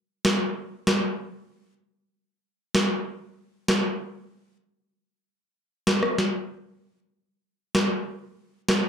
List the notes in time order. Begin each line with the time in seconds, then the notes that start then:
0.25 cross-stick, snare
0.87 cross-stick, snare
2.75 cross-stick, snare
3.68 cross-stick, snare
5.87 cross-stick, snare
6.03 cross-stick
6.18 snare
7.75 cross-stick, snare
8.69 cross-stick, snare